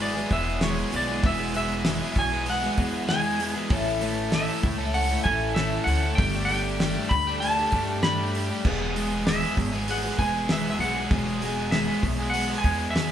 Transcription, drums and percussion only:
0.00 open hi-hat medium
0.31 kick medium
0.31 open hi-hat medium
0.61 snare loud
0.61 open hi-hat medium
0.92 open hi-hat medium
1.24 kick loud
1.24 open hi-hat medium
1.54 open hi-hat medium
1.85 snare loud
1.85 open hi-hat medium
2.15 kick medium
2.15 open hi-hat medium
2.46 open hi-hat medium
2.77 kick medium
2.77 open hi-hat medium
3.09 snare medium
3.09 open hi-hat medium
3.40 open hi-hat medium
3.70 kick loud
3.70 open hi-hat medium
4.01 snare soft
4.01 open hi-hat medium
4.32 snare loud
4.32 open hi-hat medium
4.63 kick medium
4.63 open hi-hat medium
4.94 open hi-hat medium
5.26 kick medium
5.26 open hi-hat soft
5.56 snare loud
5.56 open hi-hat medium
5.87 open hi-hat medium
6.18 kick loud
6.18 open hi-hat medium
6.49 open hi-hat medium
6.80 snare loud
6.80 open hi-hat medium
7.11 kick medium
7.11 open hi-hat medium
7.42 open hi-hat medium
7.72 kick medium
7.72 open hi-hat medium
8.03 snare loud
8.03 open hi-hat medium
8.35 open hi-hat medium
8.65 kick loud
8.65 crash loud
8.96 open hi-hat medium
9.27 snare loud
9.27 open hi-hat medium
9.43 snare soft
9.57 kick medium
9.57 open hi-hat medium
9.88 open hi-hat medium
10.19 kick medium
10.19 open hi-hat medium
10.49 snare loud
10.49 open hi-hat medium
10.81 open hi-hat medium
11.11 kick loud
11.11 open hi-hat medium
11.42 open hi-hat medium
11.72 snare loud
11.72 open hi-hat medium
12.03 kick medium
12.03 open hi-hat medium
12.34 open hi-hat medium
12.64 kick medium
12.64 open hi-hat medium
12.96 snare loud
12.96 open hi-hat medium

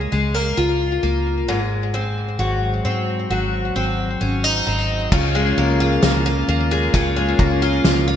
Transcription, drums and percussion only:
5.12 kick loud
5.12 crash medium
6.02 snare loud
6.02 closed hi-hat medium
6.02 tambourine medium
6.94 kick loud
6.94 closed hi-hat medium
7.39 kick loud
7.84 snare loud
7.84 closed hi-hat medium
7.84 tambourine medium

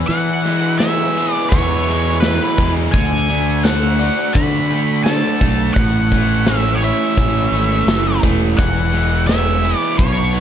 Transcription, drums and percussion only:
0.10 closed hi-hat medium
0.46 snare soft
0.46 closed hi-hat medium
0.80 snare medium
0.80 closed hi-hat medium
1.17 closed hi-hat medium
1.52 kick loud
1.52 closed hi-hat medium
1.88 closed hi-hat medium
2.22 snare loud
2.22 closed hi-hat medium
2.58 kick medium
2.58 closed hi-hat medium
2.94 kick loud
2.94 closed hi-hat medium
3.29 closed hi-hat medium
3.65 snare loud
3.65 closed hi-hat medium
4.00 closed hi-hat medium
4.35 kick loud
4.35 closed hi-hat medium
4.70 closed hi-hat medium
5.06 snare loud
5.06 closed hi-hat medium
5.41 kick medium
5.41 closed hi-hat medium
5.76 kick loud
5.76 closed hi-hat medium
6.12 kick medium
6.12 closed hi-hat medium
6.47 snare loud
6.47 closed hi-hat medium
6.83 closed hi-hat medium
7.17 kick medium
7.17 closed hi-hat medium
7.53 closed hi-hat medium
7.88 snare loud
7.88 closed hi-hat medium
8.23 kick medium
8.23 closed hi-hat medium
8.59 kick loud
8.59 closed hi-hat medium
8.94 closed hi-hat medium
9.29 snare loud
9.29 closed hi-hat medium
9.65 closed hi-hat medium
9.99 kick loud
9.99 closed hi-hat medium
10.35 closed hi-hat medium

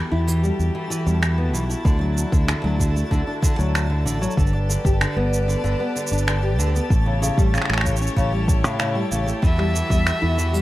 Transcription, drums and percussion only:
0.28 shaker medium
0.44 shaker soft
0.60 shaker soft
0.92 shaker medium
1.07 shaker soft
1.23 finger snap medium
1.23 shaker soft
1.55 shaker medium
1.70 shaker soft
1.85 kick loud
1.85 shaker soft
2.18 shaker medium
2.32 kick loud
2.32 shaker soft
2.48 finger snap medium
2.48 shaker soft
2.80 kick medium
2.80 shaker medium
2.97 shaker soft
3.11 kick medium
3.11 shaker soft
3.43 kick loud
3.43 shaker medium
3.60 shaker soft
3.75 finger snap medium
3.75 shaker soft
4.07 shaker medium
4.23 shaker soft
4.31 shaker soft
4.37 kick loud
4.37 shaker soft
4.47 shaker soft
4.70 shaker medium
4.85 kick loud
4.85 shaker soft
5.01 finger snap medium
5.01 shaker soft
5.34 shaker medium
5.49 shaker soft
5.65 shaker soft
5.97 shaker medium
6.07 shaker medium
6.13 shaker soft
6.18 shaker soft
6.28 finger snap medium
6.28 shaker soft
6.60 shaker medium
6.76 shaker soft
6.90 kick loud
6.90 shaker soft
7.23 shaker medium
7.38 kick loud
7.38 shaker soft
7.54 finger snap soft
7.54 shaker soft
7.58 finger snap soft
7.62 finger snap medium
7.65 finger snap medium
7.70 finger snap medium
7.73 finger snap medium
7.78 finger snap medium
7.81 finger snap medium
7.81 kick medium
7.86 shaker medium
7.97 shaker medium
8.02 shaker soft
8.07 shaker soft
8.17 kick medium
8.17 shaker soft
8.48 kick loud
8.48 shaker medium
8.64 shaker soft
8.80 finger snap medium
8.80 shaker soft
9.12 shaker medium
9.28 shaker soft
9.43 kick loud
9.43 shaker soft
9.59 finger snap soft
9.76 shaker medium
9.90 kick loud
9.90 shaker soft
10.07 finger snap medium
10.07 shaker soft
10.39 shaker medium
10.54 shaker soft

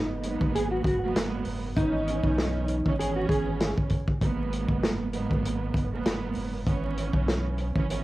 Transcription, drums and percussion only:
0.23 closed hi-hat medium
0.41 kick loud
0.55 closed hi-hat loud
0.84 kick loud
0.84 closed hi-hat medium
1.15 snare loud
1.15 closed hi-hat medium
1.44 open hi-hat medium
1.76 kick loud
1.76 closed hi-hat medium
2.08 closed hi-hat medium
2.24 kick loud
2.38 snare loud
2.38 closed hi-hat medium
2.68 closed hi-hat medium
2.86 kick loud
3.00 closed hi-hat loud
3.29 kick loud
3.29 closed hi-hat medium
3.61 snare loud
3.61 closed hi-hat medium
3.78 kick medium
3.90 kick medium
3.90 closed hi-hat medium
4.08 kick medium
4.22 kick loud
4.22 closed hi-hat medium
4.53 closed hi-hat medium
4.69 kick loud
4.83 snare loud
4.83 closed hi-hat medium
5.13 closed hi-hat medium
5.31 kick loud
5.45 closed hi-hat loud
5.74 kick loud
5.74 closed hi-hat medium
6.05 snare loud
6.05 closed hi-hat medium
6.35 open hi-hat medium
6.66 kick loud
6.66 closed hi-hat medium
6.97 closed hi-hat medium
7.13 kick loud
7.28 snare loud
7.28 closed hi-hat medium
7.58 closed hi-hat medium
7.76 kick loud
7.90 closed hi-hat loud

